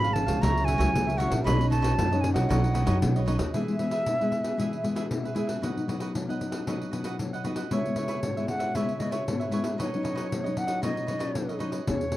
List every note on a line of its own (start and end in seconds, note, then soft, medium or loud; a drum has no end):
0.00 0.23 G#1 medium
0.00 0.40 G#2 medium
0.00 0.11 F3 medium
0.00 0.12 G#3 medium
0.00 0.11 C#4 medium
0.00 0.25 F5 soft
0.00 0.15 B5 loud
0.04 0.27 G#4 soft
0.04 0.26 C#5 soft
0.04 pandeiro soft
0.13 0.38 F3 medium
0.13 0.38 G#3 medium
0.13 0.38 C#4 medium
0.13 0.43 A5 medium
0.13 pandeiro medium
0.26 0.39 C#2 medium
0.26 0.41 G#4 soft
0.26 0.40 C#5 soft
0.26 0.40 F5 medium
0.26 pandeiro medium
0.41 0.75 C#2 medium
0.41 0.91 C#3 medium
0.41 0.77 F#3 medium
0.41 0.77 A#3 medium
0.41 0.77 E4 medium
0.41 0.65 F#4 medium
0.41 0.66 A#4 medium
0.41 0.67 C#5 medium
0.41 0.67 E5 medium
0.41 0.66 A#5 medium
0.41 pandeiro medium
0.58 pandeiro soft
0.65 0.77 F#4 medium
0.65 0.78 A#4 medium
0.65 0.78 C#5 medium
0.65 0.79 E5 medium
0.65 1.19 G#5 medium
0.65 pandeiro medium
0.78 0.91 C#2 medium
0.78 1.15 F#3 medium
0.78 1.16 A#3 medium
0.78 1.16 E4 medium
0.78 0.89 F#4 medium
0.78 0.89 A#4 medium
0.78 0.89 C#5 medium
0.78 0.90 E5 medium
0.78 pandeiro medium
0.93 1.27 C#2 medium
0.93 1.44 C#3 medium
0.93 pandeiro medium
1.07 1.18 A#4 soft
1.07 1.19 C#5 soft
1.07 1.19 E5 soft
1.07 pandeiro soft
1.17 1.35 F#3 medium
1.17 1.36 A#3 medium
1.17 1.36 E4 medium
1.17 1.31 F#4 medium
1.17 1.31 A#4 medium
1.17 1.30 C#5 medium
1.17 1.29 E5 medium
1.17 1.44 F#5 medium
1.17 pandeiro medium
1.30 1.43 A#1 medium
1.30 1.45 A#4 soft
1.30 1.44 C#5 soft
1.30 1.44 E5 soft
1.30 pandeiro medium
1.44 1.90 B1 medium
1.44 1.96 B2 medium
1.44 1.55 F#3 medium
1.44 1.56 C#4 medium
1.44 1.69 D#4 medium
1.44 1.56 D#4 medium
1.44 1.69 B4 medium
1.44 1.70 C#5 medium
1.44 1.71 D#5 medium
1.44 1.69 B5 medium
1.44 pandeiro medium
1.60 1.98 F#3 medium
1.60 2.08 C#4 medium
1.60 2.08 D#4 medium
1.60 pandeiro soft
1.70 1.81 D#4 medium
1.70 1.81 B4 soft
1.70 1.81 C#5 medium
1.70 1.82 D#5 soft
1.70 2.22 A5 medium
1.70 pandeiro medium
1.82 1.93 D#4 medium
1.82 1.93 B4 medium
1.82 1.93 C#5 medium
1.82 1.93 D#5 medium
1.82 pandeiro medium
1.98 2.31 F#2 medium
1.98 2.11 F#3 medium
1.98 pandeiro medium
2.12 2.46 F#3 medium
2.12 2.47 C#4 medium
2.12 2.47 D#4 medium
2.12 2.35 B4 soft
2.12 2.34 C#5 soft
2.12 2.33 D#5 soft
2.12 pandeiro soft
2.21 2.33 G#5 medium
2.21 pandeiro medium
2.33 2.46 B1 medium
2.33 2.49 B4 soft
2.33 2.48 C#5 soft
2.33 2.48 D#5 soft
2.33 3.22 F#5 medium
2.33 pandeiro medium
2.49 2.83 B1 medium
2.49 3.00 B2 medium
2.49 2.66 F#3 medium
2.49 2.66 C#4 medium
2.49 2.72 D#4 medium
2.49 2.66 D#4 medium
2.49 2.73 B4 medium
2.49 2.74 C#5 medium
2.49 2.75 D#5 medium
2.49 pandeiro medium
2.64 pandeiro soft
2.73 2.84 F#3 medium
2.73 2.84 C#4 medium
2.73 2.85 D#4 medium
2.73 2.84 D#4 medium
2.73 2.86 B4 medium
2.73 2.86 C#5 medium
2.73 2.86 D#5 medium
2.73 pandeiro medium
2.86 2.99 F#2 medium
2.86 3.01 F#3 medium
2.86 3.23 C#4 medium
2.86 2.97 D#4 medium
2.86 3.23 D#4 medium
2.86 2.97 B4 medium
2.86 2.97 C#5 medium
2.86 2.97 D#5 medium
2.86 pandeiro medium
3.02 3.35 B1 medium
3.02 3.26 F#3 medium
3.02 pandeiro medium
3.16 3.25 B4 soft
3.16 3.26 C#5 soft
3.16 3.27 D#5 soft
3.16 pandeiro soft
3.26 3.44 F#3 medium
3.26 3.45 C#4 medium
3.26 3.39 D#4 medium
3.26 3.45 D#4 medium
3.26 3.39 B4 medium
3.26 3.38 C#5 medium
3.26 3.37 D#5 medium
3.26 pandeiro medium
3.39 3.51 D#2 medium
3.39 3.53 B4 soft
3.39 3.52 C#5 soft
3.39 3.52 D#5 medium
3.39 pandeiro medium
3.52 4.04 E3 medium
3.52 3.62 G#3 soft
3.52 3.62 B3 soft
3.52 3.78 E4 soft
3.52 3.63 E4 soft
3.52 3.79 G#4 medium
3.52 3.79 B4 medium
3.52 5.32 E5 medium
3.52 3.80 E5 medium
3.52 pandeiro medium
3.68 3.77 G#3 soft
3.68 3.77 B3 medium
3.68 3.77 E4 medium
3.68 pandeiro soft
3.79 4.15 G#3 soft
3.79 4.15 B3 soft
3.79 3.90 E4 soft
3.79 4.15 E4 soft
3.79 3.91 G#4 soft
3.79 3.91 B4 soft
3.79 3.92 E5 soft
3.79 pandeiro soft
3.91 4.02 E4 medium
3.91 4.02 G#4 medium
3.91 4.02 B4 medium
3.91 4.02 E5 medium
3.91 pandeiro soft
4.06 4.56 B2 medium
4.06 pandeiro medium
4.19 4.55 G#3 soft
4.19 4.55 B3 medium
4.19 4.55 E4 medium
4.19 4.44 G#4 soft
4.19 4.43 B4 soft
4.19 4.42 E5 soft
4.19 pandeiro soft
4.32 pandeiro soft
4.43 4.57 G#4 soft
4.43 4.57 B4 soft
4.43 4.56 E5 soft
4.43 pandeiro medium
4.57 5.08 E3 medium
4.57 4.73 G#3 soft
4.57 4.74 B3 soft
4.57 4.82 E4 medium
4.57 4.74 E4 medium
4.57 4.83 G#4 medium
4.57 4.84 B4 medium
4.57 4.84 E5 medium
4.57 pandeiro medium
4.73 pandeiro soft
4.83 5.32 G#3 soft
4.83 5.32 B3 soft
4.83 4.94 E4 soft
4.83 5.33 E4 soft
4.83 4.95 G#4 soft
4.83 4.95 B4 soft
4.83 4.96 E5 soft
4.83 pandeiro soft
4.96 5.06 E4 medium
4.96 5.06 G#4 medium
4.96 5.06 B4 medium
4.96 5.06 E5 medium
4.96 pandeiro medium
5.11 5.60 B2 medium
5.11 pandeiro medium
5.24 5.34 G#4 soft
5.24 5.35 B4 soft
5.24 5.35 E5 soft
5.24 pandeiro soft
5.35 5.60 G#3 soft
5.35 5.60 B3 soft
5.35 5.48 E4 medium
5.35 5.60 E4 soft
5.35 5.48 G#4 medium
5.35 5.47 B4 medium
5.35 5.46 E5 medium
5.35 pandeiro soft
5.47 5.62 G#4 soft
5.47 5.61 B4 soft
5.47 5.61 E5 soft
5.47 pandeiro medium
5.61 6.12 B2 medium
5.61 5.70 F#3 soft
5.61 5.70 B3 soft
5.61 5.70 D#4 medium
5.61 5.87 F#4 medium
5.61 5.87 B4 medium
5.61 5.88 D#5 medium
5.61 5.88 F#5 medium
5.61 pandeiro medium
5.76 5.85 F#3 soft
5.76 5.85 B3 soft
5.76 5.85 D#4 medium
5.76 pandeiro soft
5.87 6.14 F#3 soft
5.87 6.24 B3 soft
5.87 6.24 D#4 medium
5.87 5.99 F#4 soft
5.87 6.00 B4 soft
5.87 6.00 D#5 soft
5.87 6.00 F#5 soft
5.87 pandeiro soft
6.00 6.10 F#4 medium
6.00 6.11 B4 medium
6.00 6.11 D#5 medium
6.00 6.11 F#5 medium
6.00 pandeiro medium
6.15 6.26 F#3 medium
6.15 pandeiro medium
6.28 6.63 F#3 soft
6.28 6.63 B3 soft
6.28 6.64 D#4 medium
6.28 6.53 B4 soft
6.28 6.52 D#5 soft
6.28 6.50 F#5 soft
6.28 pandeiro soft
6.41 pandeiro soft
6.52 6.66 B4 soft
6.52 6.66 D#5 soft
6.52 6.65 F#5 soft
6.52 pandeiro medium
6.67 7.17 B2 medium
6.67 6.89 F#3 soft
6.67 6.89 B3 soft
6.67 6.90 D#4 soft
6.67 6.90 F#4 medium
6.67 6.91 B4 medium
6.67 6.92 D#5 medium
6.67 6.92 F#5 medium
6.67 pandeiro medium
6.82 pandeiro soft
6.91 7.19 F#3 soft
6.91 7.27 B3 soft
6.91 7.27 D#4 soft
6.91 7.03 F#4 soft
6.91 7.04 B4 soft
6.91 7.04 D#5 soft
6.91 7.04 F#5 soft
6.91 pandeiro soft
7.04 7.15 F#4 medium
7.04 7.15 B4 medium
7.04 7.15 D#5 medium
7.04 7.15 F#5 medium
7.04 pandeiro medium
7.19 7.44 F#3 medium
7.19 pandeiro medium
7.33 7.43 B4 soft
7.33 7.45 D#5 soft
7.33 7.45 F#5 soft
7.33 pandeiro soft
7.44 7.62 F#3 soft
7.44 7.63 B3 soft
7.44 7.63 D#4 medium
7.44 7.57 F#4 medium
7.44 7.57 B4 medium
7.44 7.56 D#5 medium
7.44 7.55 F#5 medium
7.44 pandeiro soft
7.56 7.70 B4 soft
7.56 7.70 D#5 soft
7.56 7.70 F#5 soft
7.56 pandeiro medium
7.71 8.21 C#3 medium
7.71 7.80 G#3 soft
7.71 7.81 B3 soft
7.71 7.95 E4 medium
7.71 7.81 E4 medium
7.71 7.96 B4 medium
7.71 7.97 C#5 medium
7.71 8.47 C#5 medium
7.71 7.97 E5 medium
7.71 pandeiro medium
7.86 8.33 G#3 medium
7.86 8.33 B3 medium
7.86 8.34 E4 medium
7.86 pandeiro soft
7.96 8.07 E4 soft
7.96 8.08 B4 soft
7.96 8.08 C#5 soft
7.96 8.08 E5 soft
7.96 pandeiro medium
8.08 8.19 E4 medium
8.08 8.19 B4 medium
8.08 8.19 C#5 medium
8.08 8.19 E5 medium
8.08 pandeiro soft
8.23 8.73 G#2 medium
8.23 pandeiro medium
8.37 8.72 G#3 medium
8.37 8.72 B3 medium
8.37 8.72 E4 medium
8.37 8.60 B4 soft
8.37 8.59 C#5 soft
8.37 8.58 E5 soft
8.37 pandeiro soft
8.48 8.77 F#5 medium
8.48 pandeiro soft
8.59 8.74 B4 soft
8.59 8.74 C#5 soft
8.59 8.73 E5 soft
8.59 pandeiro medium
8.75 9.25 C#3 medium
8.75 8.91 G#3 soft
8.75 8.91 B3 soft
8.75 8.99 E4 medium
8.75 8.91 E4 medium
8.75 9.00 B4 medium
8.75 9.00 C#5 medium
8.75 9.01 E5 medium
8.75 pandeiro medium
8.89 pandeiro soft
8.99 9.16 G#3 soft
8.99 9.16 B3 soft
8.99 9.16 E4 soft
8.99 9.10 E4 soft
8.99 9.11 B4 soft
8.99 9.11 C#5 soft
8.99 9.13 D#5 medium
8.99 9.11 E5 soft
8.99 pandeiro soft
9.11 9.22 E4 medium
9.11 9.23 B4 medium
9.11 9.52 C#5 medium
9.11 9.23 C#5 medium
9.11 9.23 E5 medium
9.11 pandeiro medium
9.27 9.77 G#2 medium
9.27 9.49 G#3 soft
9.27 9.50 B3 soft
9.27 9.50 E4 soft
9.27 pandeiro medium
9.40 9.51 B4 soft
9.40 9.52 C#5 soft
9.40 9.52 E5 soft
9.40 pandeiro soft
9.51 9.70 G#3 soft
9.51 9.70 B3 soft
9.51 9.65 E4 medium
9.51 9.71 E4 medium
9.51 9.65 B4 medium
9.51 9.63 C#5 medium
9.51 9.62 E5 medium
9.51 pandeiro soft
9.64 9.78 B4 soft
9.64 9.78 C#5 soft
9.64 9.77 E5 soft
9.64 pandeiro medium
9.78 10.30 B2 medium
9.78 9.88 F#3 soft
9.78 9.88 C#4 soft
9.78 10.02 D#4 medium
9.78 9.88 D#4 medium
9.78 10.03 B4 medium
9.78 10.03 C#5 medium
9.78 10.59 C#5 medium
9.78 10.04 D#5 medium
9.78 pandeiro medium
9.94 10.31 F#3 medium
9.94 10.42 C#4 medium
9.94 10.42 D#4 medium
9.94 pandeiro soft
10.03 10.14 D#4 soft
10.03 10.14 B4 soft
10.03 10.14 C#5 soft
10.03 10.15 D#5 soft
10.03 pandeiro medium
10.15 10.26 D#4 medium
10.15 10.26 B4 medium
10.15 10.27 C#5 medium
10.15 10.27 D#5 medium
10.15 pandeiro medium
10.32 10.45 F#3 medium
10.32 pandeiro medium
10.44 10.81 F#3 medium
10.44 10.81 C#4 medium
10.44 10.81 D#4 medium
10.44 10.68 B4 soft
10.44 10.67 C#5 soft
10.44 10.66 D#5 soft
10.44 pandeiro soft
10.57 10.84 F#5 medium
10.57 pandeiro soft
10.67 10.81 B4 soft
10.67 10.82 C#5 soft
10.67 10.81 D#5 soft
10.67 pandeiro medium
10.82 11.34 B2 medium
10.82 11.00 F#3 soft
10.82 11.00 C#4 medium
10.82 11.05 D#4 medium
10.82 11.00 D#4 medium
10.82 11.06 B4 medium
10.82 11.07 C#5 medium
10.82 11.58 D#5 medium
10.82 11.08 D#5 medium
10.82 pandeiro medium
10.97 pandeiro soft
11.07 11.35 F#3 soft
11.07 11.18 D#4 soft
11.07 11.18 B4 soft
11.07 11.19 C#5 soft
11.07 11.20 D#5 soft
11.07 pandeiro soft
11.11 11.58 C#4 soft
11.11 11.59 D#4 soft
11.19 11.30 D#4 medium
11.19 11.31 B4 medium
11.19 11.31 C#5 medium
11.19 11.31 D#5 medium
11.19 pandeiro medium
11.35 11.61 F#3 medium
11.35 pandeiro medium
11.49 11.59 B4 soft
11.49 11.59 C#5 soft
11.49 11.60 D#5 soft
11.49 pandeiro soft
11.59 11.79 F#3 soft
11.59 11.79 C#4 soft
11.59 11.73 D#4 medium
11.59 11.79 D#4 medium
11.59 11.72 B4 medium
11.59 11.71 C#5 medium
11.59 11.70 D#5 medium
11.59 pandeiro soft
11.72 11.86 B4 soft
11.72 11.86 C#5 soft
11.72 11.85 D#5 soft
11.72 pandeiro medium
11.87 12.17 E2 medium
11.87 12.17 E3 soft
11.87 12.04 B3 medium
11.87 12.04 C#4 medium
11.87 12.04 G#4 medium
11.87 12.17 C#5 medium
11.87 pandeiro medium
12.01 pandeiro soft
12.12 12.17 B3 medium
12.12 pandeiro medium